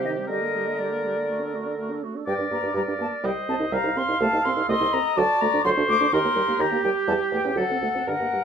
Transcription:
0.00 0.28 C3 medium
0.00 0.27 G4 medium
0.04 0.19 D#3 medium
0.04 0.20 D#4 medium
0.04 0.10 D#5 medium
0.17 0.28 G3 medium
0.17 0.30 C4 medium
0.28 1.99 D3 medium
0.28 0.43 G3 medium
0.28 1.98 A#4 medium
0.28 0.80 D#5 medium
0.32 0.46 G4 medium
0.41 0.56 A#3 medium
0.41 0.58 A#4 medium
0.55 0.69 G3 medium
0.55 0.71 G4 medium
0.67 0.78 A#3 soft
0.67 0.80 A#4 medium
0.78 0.93 G3 medium
0.78 1.78 D5 medium
0.82 0.95 G4 medium
0.91 1.07 A#3 medium
0.91 1.07 A#4 medium
1.05 1.18 G3 medium
1.05 1.20 G4 medium
1.17 1.29 A#3 soft
1.17 1.29 A#4 medium
1.29 1.43 A3 medium
1.29 1.44 F#4 medium
1.41 1.56 D4 medium
1.41 1.57 A4 medium
1.54 1.67 A3 medium
1.54 1.69 F#4 medium
1.66 1.78 D4 medium
1.66 1.79 A4 soft
1.79 1.92 A3 medium
1.79 1.94 F#4 medium
1.91 2.05 D4 medium
1.91 2.05 A4 medium
2.04 2.17 A3 medium
2.04 2.18 F#4 medium
2.16 2.27 D4 soft
2.16 2.26 A4 medium
2.26 2.32 G2 medium
2.26 2.33 G3 medium
2.26 3.27 A#4 medium
2.26 2.72 D5 medium
2.26 2.34 G5 loud
2.38 2.44 G2 medium
2.38 2.46 D4 medium
2.51 2.57 G2 medium
2.51 2.57 A#3 medium
2.51 2.75 A#5 medium
2.62 2.68 G2 medium
2.62 2.70 D4 medium
2.74 2.80 G2 loud
2.74 2.82 G3 medium
2.74 3.26 D5 medium
2.74 2.82 A#5 loud
2.87 2.93 G2 medium
2.87 2.93 D4 medium
2.99 3.05 G2 medium
2.99 3.06 A#3 medium
2.99 3.07 A5 medium
3.23 3.30 C2 medium
3.23 3.29 G3 loud
3.23 4.03 C5 medium
3.23 3.75 D#5 medium
3.23 3.31 G5 medium
3.48 3.54 C2 medium
3.48 3.54 C4 medium
3.48 3.55 A5 loud
3.60 3.65 C2 medium
3.60 3.65 D#4 medium
3.72 3.77 C2 loud
3.72 3.78 G3 medium
3.72 4.69 F5 loud
3.72 3.98 A#5 loud
3.84 3.89 C2 medium
3.84 3.90 D#4 medium
3.95 4.01 C2 medium
3.95 4.02 C4 medium
3.95 4.20 C6 loud
4.08 4.13 C2 medium
4.08 4.14 D#4 medium
4.20 4.26 C2 loud
4.20 4.27 A3 loud
4.20 5.18 A4 medium
4.20 4.46 A5 loud
4.33 4.38 C2 medium
4.33 4.39 D#4 medium
4.45 4.50 C2 medium
4.45 4.51 C4 medium
4.45 4.69 C6 loud
4.56 4.62 C2 medium
4.56 4.62 D#4 medium
4.68 4.74 C2 loud
4.68 4.74 A3 loud
4.68 5.19 D#5 loud
4.68 4.94 C6 loud
4.81 4.86 C2 medium
4.81 4.86 D#4 medium
4.93 4.99 C2 medium
4.93 4.99 C4 medium
4.93 5.19 A#5 loud
5.16 5.23 D2 loud
5.16 5.22 F#3 loud
5.16 6.12 F#4 medium
5.16 5.65 D5 loud
5.16 5.42 A5 loud
5.41 5.47 D2 medium
5.41 5.47 A3 medium
5.41 5.63 A#5 loud
5.53 5.59 D2 medium
5.53 5.59 D4 medium
5.64 5.71 D2 loud
5.64 5.70 F#3 loud
5.64 6.12 C5 loud
5.64 5.70 C6 loud
5.77 5.83 D2 medium
5.77 5.83 D4 medium
5.88 5.94 D2 medium
5.88 5.94 A3 medium
5.88 6.14 D6 loud
6.01 6.06 D2 medium
6.01 6.06 D4 medium
6.12 6.18 D#2 loud
6.12 6.18 D#3 loud
6.12 7.60 G4 loud
6.12 6.63 A#4 loud
6.12 6.61 C6 loud
6.24 6.30 D#2 medium
6.24 6.30 A#3 medium
6.36 6.41 D#2 medium
6.36 6.41 G3 medium
6.47 6.53 D#2 medium
6.47 6.54 A#3 medium
6.59 6.64 D#2 loud
6.59 6.65 D#3 medium
6.59 7.57 G4 loud
6.59 6.83 A#5 loud
6.71 6.76 D#2 medium
6.71 6.77 A#3 medium
6.83 6.89 D#2 medium
6.83 6.90 G3 medium
6.83 6.89 G5 loud
7.07 7.13 E2 loud
7.07 7.13 G3 loud
7.07 7.13 A5 loud
7.31 7.37 E2 medium
7.31 7.39 A3 medium
7.31 7.58 G5 loud
7.44 7.50 E2 medium
7.44 7.51 C#4 medium
7.56 7.62 D2 loud
7.56 7.63 F#3 loud
7.56 8.10 A4 medium
7.56 8.08 A4 medium
7.56 7.82 F#5 loud
7.69 7.75 D2 medium
7.69 7.76 C4 medium
7.81 7.87 D2 medium
7.81 7.88 A3 medium
7.81 8.07 F#5 medium
7.94 8.00 D2 medium
7.94 8.01 C4 medium
8.07 8.13 G2 medium
8.07 8.14 D3 medium
8.07 8.44 A#4 medium
8.07 8.44 F#5 loud
8.19 8.26 G2 medium
8.19 8.27 A#3 soft
8.33 8.39 G2 medium
8.33 8.40 G3 medium

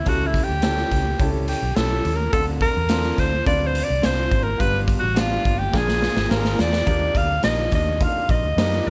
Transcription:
0.06 0.40 C#2 loud
0.06 0.88 C#3 medium
0.06 0.48 C#4 medium
0.06 0.48 E4 medium
0.06 0.28 F#4 loud
0.06 0.48 G4 medium
0.06 0.49 A4 medium
0.06 kick medium
0.06 closed hi-hat medium
0.27 0.45 E4 medium
0.34 kick medium
0.34 closed hi-hat medium
0.44 1.29 G4 loud
0.49 0.83 D2 medium
0.62 1.05 C#4 medium
0.62 1.05 E4 medium
0.62 1.05 G4 medium
0.62 1.05 A4 medium
0.62 snare loud
0.62 closed hi-hat medium
0.78 snare soft
0.91 1.14 C#2 medium
0.91 kick medium
0.91 snare soft
0.91 closed hi-hat medium
1.19 1.53 C#2 medium
1.19 1.61 C#4 medium
1.19 1.62 E4 medium
1.19 1.62 G4 medium
1.19 1.62 A4 loud
1.19 kick loud
1.19 closed hi-hat medium
1.48 1.77 G4 medium
1.48 closed hi-hat medium
1.63 1.74 B1 medium
1.76 1.99 B1 medium
1.76 2.18 C#4 medium
1.76 2.18 E4 medium
1.76 2.19 G4 medium
1.76 2.17 A4 loud
1.76 2.19 A4 medium
1.76 snare medium
1.76 closed hi-hat medium
2.05 2.27 D#2 medium
2.05 closed hi-hat medium
2.16 2.32 A#4 medium
2.33 2.67 D2 loud
2.33 3.14 D3 medium
2.33 2.75 C4 medium
2.33 2.75 D4 medium
2.33 2.75 F4 medium
2.33 2.46 A4 loud
2.33 2.76 A4 medium
2.33 kick loud
2.33 closed hi-hat medium
2.61 3.21 A#4 loud
2.61 kick medium
2.61 closed hi-hat medium
2.77 3.10 E2 medium
2.89 3.32 C4 medium
2.89 3.32 D4 medium
2.89 3.32 F4 medium
2.89 3.33 A4 medium
2.89 snare loud
2.89 closed hi-hat loud
3.04 snare soft
3.18 3.41 D2 medium
3.18 3.46 C5 loud
3.18 kick medium
3.18 snare soft
3.18 closed hi-hat medium
3.45 3.80 D2 loud
3.45 3.88 C4 medium
3.45 3.88 D4 medium
3.45 3.89 F4 medium
3.45 3.89 B4 medium
3.45 3.68 D5 loud
3.45 kick loud
3.45 closed hi-hat medium
3.66 3.85 C5 loud
3.75 closed hi-hat medium
3.84 4.07 D5 loud
3.90 4.01 C2 medium
4.02 4.26 C2 medium
4.02 4.44 C4 medium
4.02 4.45 D4 medium
4.02 4.45 F4 medium
4.02 4.45 C5 medium
4.02 4.45 C5 loud
4.02 snare loud
4.02 closed hi-hat medium
4.31 4.54 G#1 medium
4.31 kick medium
4.31 closed hi-hat medium
4.43 4.62 A#4 loud
4.58 4.93 G1 loud
4.58 5.41 G2 medium
4.58 5.01 B3 medium
4.58 5.01 D4 medium
4.58 5.01 F4 medium
4.58 5.02 G4 medium
4.58 4.79 B4 loud
4.58 kick loud
4.58 closed hi-hat medium
4.88 kick loud
4.88 closed hi-hat medium
4.99 5.37 A1 medium
4.99 5.21 F#4 loud
5.15 5.57 B3 medium
5.15 5.58 D4 medium
5.15 5.58 F4 medium
5.15 5.58 G4 medium
5.15 snare loud
5.15 closed hi-hat loud
5.19 5.60 F4 loud
5.45 5.68 G1 medium
5.45 kick medium
5.45 closed hi-hat medium
5.58 5.79 G4 medium
5.71 6.07 A#1 loud
5.71 6.54 A#2 medium
5.71 6.14 A#3 medium
5.71 6.15 D4 medium
5.71 6.15 F4 medium
5.71 6.15 G#4 medium
5.71 kick loud
5.71 snare medium
5.77 6.30 G#4 medium
5.88 snare medium
6.02 snare medium
6.16 6.28 G#1 medium
6.16 snare medium
6.29 6.53 G#1 loud
6.29 6.71 A#3 medium
6.29 6.72 D4 medium
6.29 6.72 F4 medium
6.29 6.37 G4 medium
6.29 6.62 A#4 medium
6.29 snare medium
6.37 6.75 G#4 medium
6.45 snare medium
6.59 6.82 E2 medium
6.59 7.19 D5 loud
6.59 snare loud
6.73 snare medium
6.86 7.10 D#2 loud
6.86 7.68 D#3 medium
6.86 7.28 A#3 medium
6.86 7.28 D4 medium
6.86 7.29 D#4 medium
6.86 7.29 G4 medium
6.86 kick loud
6.86 closed hi-hat medium
7.15 7.38 D2 medium
7.15 7.44 F5 loud
7.15 kick medium
7.15 closed hi-hat medium
7.43 7.67 A#1 medium
7.43 7.64 A#3 medium
7.43 7.65 D4 medium
7.43 7.65 D#4 medium
7.43 7.65 G4 medium
7.43 7.71 D#5 loud
7.43 snare loud
7.43 closed hi-hat medium
7.71 8.06 D#2 medium
7.71 7.93 A#3 medium
7.71 7.93 D4 medium
7.71 7.93 D#4 medium
7.71 7.93 G4 medium
7.71 8.05 D#5 medium
7.71 kick medium
7.71 snare soft
7.71 closed hi-hat medium
8.00 8.42 A#3 medium
8.00 8.42 D4 medium
8.00 8.43 D#4 medium
8.00 8.43 F4 medium
8.00 8.32 F5 loud
8.00 kick loud
8.00 closed hi-hat medium
8.29 8.40 A#1 medium
8.29 8.89 D#5 loud
8.29 kick loud
8.29 closed hi-hat medium
8.43 8.55 D2 medium
8.57 8.79 F#2 medium
8.57 8.90 A#3 medium
8.57 8.90 D4 medium
8.57 8.90 D#4 medium
8.57 8.90 G4 medium
8.57 snare loud
8.57 closed hi-hat medium
8.73 snare soft
8.87 8.90 F2 medium

